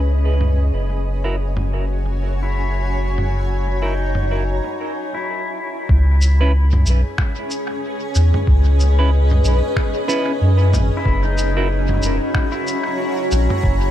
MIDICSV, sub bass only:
0, 0, Header, 1, 2, 480
1, 0, Start_track
1, 0, Tempo, 645161
1, 545, Time_signature, 4, 2, 24, 8
1, 10347, End_track
2, 0, Start_track
2, 0, Title_t, "Sub bass"
2, 0, Program_c, 0, 38
2, 0, Note_on_c, 0, 37, 79
2, 526, Note_off_c, 0, 37, 0
2, 543, Note_on_c, 0, 30, 81
2, 3424, Note_off_c, 0, 30, 0
2, 4384, Note_on_c, 0, 37, 95
2, 5086, Note_off_c, 0, 37, 0
2, 5105, Note_on_c, 0, 35, 104
2, 5231, Note_off_c, 0, 35, 0
2, 6067, Note_on_c, 0, 40, 99
2, 6191, Note_off_c, 0, 40, 0
2, 6306, Note_on_c, 0, 37, 98
2, 7007, Note_off_c, 0, 37, 0
2, 7027, Note_on_c, 0, 35, 105
2, 7151, Note_off_c, 0, 35, 0
2, 7746, Note_on_c, 0, 42, 78
2, 7989, Note_on_c, 0, 32, 80
2, 8000, Note_off_c, 0, 42, 0
2, 8112, Note_off_c, 0, 32, 0
2, 8226, Note_on_c, 0, 30, 99
2, 8927, Note_off_c, 0, 30, 0
2, 8945, Note_on_c, 0, 28, 108
2, 9071, Note_off_c, 0, 28, 0
2, 9907, Note_on_c, 0, 34, 103
2, 10031, Note_off_c, 0, 34, 0
2, 10144, Note_on_c, 0, 30, 100
2, 10347, Note_off_c, 0, 30, 0
2, 10347, End_track
0, 0, End_of_file